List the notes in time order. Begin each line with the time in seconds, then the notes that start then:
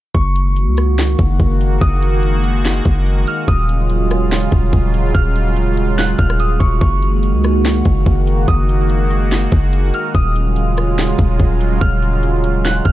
0.14 F#1 D#3 G#3 A#3 F#4 C#6, kick, closed hi-hat
0.36 closed hi-hat
0.56 closed hi-hat
0.67 C#2
0.77 cross-stick, closed hi-hat
0.98 snare, closed hi-hat
1.19 F#1, kick, closed hi-hat
1.40 F#1, kick, closed hi-hat
1.61 closed hi-hat
1.81 F#1 D#6, kick, closed hi-hat
2.02 closed hi-hat
2.23 closed hi-hat
2.44 closed hi-hat
2.65 snare, closed hi-hat
2.85 F#1, kick, closed hi-hat
3.06 closed hi-hat
3.27 F6, closed hi-hat
3.48 D#1 C#3 F#3 F4 D#6, kick, closed hi-hat
3.69 closed hi-hat
3.90 closed hi-hat
4.11 cross-stick, closed hi-hat
4.31 snare, closed hi-hat
4.52 D#1, kick, closed hi-hat
4.73 D#1, kick, closed hi-hat
4.94 closed hi-hat
5.14 D#1 F6, kick, closed hi-hat
5.36 closed hi-hat
5.56 closed hi-hat
5.77 closed hi-hat
5.98 F#6, snare, closed hi-hat
6.18 D#1 F6, kick, closed hi-hat
6.30 cross-stick
6.40 D#6, closed hi-hat
6.60 D#1 C#6, kick, closed hi-hat
6.81 F#1 D#3 A#3 F#4 C#6, kick, closed hi-hat
7.02 closed hi-hat
7.23 closed hi-hat
7.33 C#2
7.44 cross-stick, closed hi-hat
7.65 snare, closed hi-hat
7.85 F#1, kick, closed hi-hat
8.06 F#1, kick, closed hi-hat
8.27 closed hi-hat
8.48 F#1 D#6, kick, closed hi-hat
8.69 closed hi-hat
8.90 closed hi-hat
9.11 closed hi-hat
9.31 snare, closed hi-hat
9.52 F#1, kick, closed hi-hat
9.73 closed hi-hat
9.94 F6, closed hi-hat
10.15 D#1 C#3 F#3 G#3 F4 D#6, kick, closed hi-hat
10.36 closed hi-hat
10.56 closed hi-hat
10.77 cross-stick, closed hi-hat
10.98 snare, closed hi-hat
11.19 D#1, kick, closed hi-hat
11.40 D#1, kick, closed hi-hat
11.61 closed hi-hat
11.81 D#1 F6, kick, closed hi-hat
12.02 closed hi-hat
12.23 closed hi-hat
12.44 closed hi-hat
12.65 F#6, snare, closed hi-hat
12.85 D#1 F6, kick, closed hi-hat